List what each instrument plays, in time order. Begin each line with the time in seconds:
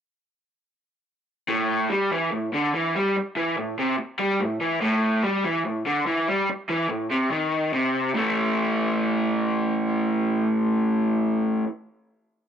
1.48 overdriven electric guitar A2
1.90 overdriven electric guitar G3
2.11 overdriven electric guitar E3
2.32 overdriven electric guitar A2
2.53 overdriven electric guitar D3
2.74 overdriven electric guitar E3
2.95 overdriven electric guitar G3
3.16 muted overdriven electric guitar stroke
3.36 overdriven electric guitar E3
3.58 overdriven electric guitar A2
3.79 overdriven electric guitar C3
3.98 muted overdriven electric guitar stroke
4.19 overdriven electric guitar G3
4.40 overdriven electric guitar A2
4.61 overdriven electric guitar E3
4.82 overdriven electric guitar A2
5.24 overdriven electric guitar G3
5.44 overdriven electric guitar E3
5.65 overdriven electric guitar A2
5.86 overdriven electric guitar D3
6.07 overdriven electric guitar E3
6.28 overdriven electric guitar G3
6.49 muted overdriven electric guitar stroke
6.70 overdriven electric guitar E3
6.90 overdriven electric guitar A2
7.11 overdriven electric guitar C3
7.32 overdriven electric guitar D#3
7.74 overdriven electric guitar C3
8.14 overdriven electric guitar A2 E3 A3